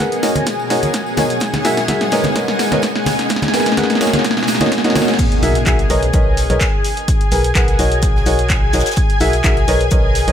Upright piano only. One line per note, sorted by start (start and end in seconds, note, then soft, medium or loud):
0.00 0.20 G#4 loud
0.00 0.20 A#4 medium
0.00 0.20 B4 medium
0.00 0.20 F#5 loud
0.23 0.68 F#4 medium
0.23 0.68 A#4 medium
0.23 0.68 C#5 medium
0.23 0.68 D#5 medium
0.70 1.15 F#4 medium
0.70 1.15 A#4 medium
0.70 1.15 C#5 medium
0.70 1.15 D#5 medium
1.18 1.30 F#4 medium
1.18 1.30 A#4 medium
1.18 1.30 C#5 medium
1.18 1.30 D#5 medium
1.65 1.77 F#4 loud
1.65 1.77 G#4 medium
1.65 1.77 A#4 medium
1.65 1.77 E5 loud
1.89 2.01 F#4 loud
1.89 2.01 G#4 medium
1.89 2.01 A#4 medium
1.89 2.01 E5 loud
2.12 2.25 A#4 loud
2.12 2.25 B4 medium
2.12 2.25 C#5 medium
2.12 2.25 D#5 loud
2.36 2.69 A#4 medium
2.36 2.69 B4 medium
2.36 2.69 C#5 medium
2.36 2.69 D#5 loud
2.72 2.83 A#4 medium
2.72 2.83 B4 medium
2.72 2.83 C#5 medium
2.72 2.83 D#5 medium
3.54 3.66 G#4 medium
3.54 3.66 A#4 medium
3.54 3.66 B4 medium
3.54 3.66 G#5 medium
3.77 3.98 G#4 loud
3.77 3.98 A#4 medium
3.77 3.98 B4 medium
3.77 3.98 F#5 loud
4.01 4.46 F#4 medium
4.01 4.46 A#4 medium
4.01 4.46 C#5 medium
4.01 4.46 D#5 medium
4.61 4.72 F#4 medium
4.61 4.72 A#4 medium
4.61 4.72 C#5 medium
4.61 4.72 D#5 loud
4.84 4.94 F#4 loud
4.84 4.94 A#4 medium
4.84 4.94 C#5 medium
4.84 4.94 D#5 loud
4.95 5.08 F#4 medium
4.95 5.08 A#4 medium
4.95 5.08 C#5 medium
4.95 5.08 D#5 loud
5.43 5.55 F#4 medium
5.43 5.55 G#4 medium
5.43 5.55 A#4 medium
5.43 5.55 E5 loud
5.66 5.79 F#4 medium
5.66 5.79 G#4 medium
5.66 5.79 A#4 medium
5.66 5.79 E5 loud
5.90 6.03 A#4 loud
5.90 6.03 B4 medium
5.90 6.03 C#5 medium
5.90 6.03 D#5 loud
6.14 6.47 A#4 medium
6.14 6.47 B4 medium
6.14 6.47 C#5 medium
6.14 6.47 D#5 loud
6.50 6.61 A#4 medium
6.50 6.61 B4 medium
6.50 6.61 C#5 medium
6.50 6.61 D#5 medium
7.32 7.44 G#4 medium
7.32 7.44 A#4 medium
7.32 7.44 B4 medium
7.32 7.44 G#5 medium
7.55 7.76 G#4 loud
7.55 7.76 A#4 medium
7.55 7.76 B4 medium
7.55 7.76 F#5 loud
7.79 8.24 F#4 medium
7.79 8.24 A#4 medium
7.79 8.24 C#5 medium
7.79 8.24 D#5 medium
8.26 8.71 F#4 medium
8.26 8.71 A#4 medium
8.26 8.71 C#5 medium
8.26 8.71 D#5 medium
8.74 8.86 F#4 medium
8.74 8.86 A#4 medium
8.74 8.86 C#5 medium
8.74 8.86 D#5 medium
9.21 9.33 F#4 loud
9.21 9.33 G#4 medium
9.21 9.33 A#4 medium
9.21 9.33 E5 loud
9.44 9.57 F#4 loud
9.44 9.57 G#4 medium
9.44 9.57 A#4 medium
9.44 9.57 E5 loud
9.68 9.81 A#4 medium
9.68 9.80 B4 medium
9.68 9.81 C#5 medium
9.68 9.80 D#5 loud
9.92 10.25 A#4 medium
9.92 10.25 B4 medium
9.92 10.25 C#5 medium
9.92 10.25 D#5 loud
10.28 10.32 A#4 medium
10.28 10.32 B4 medium
10.28 10.32 C#5 medium
10.28 10.32 D#5 medium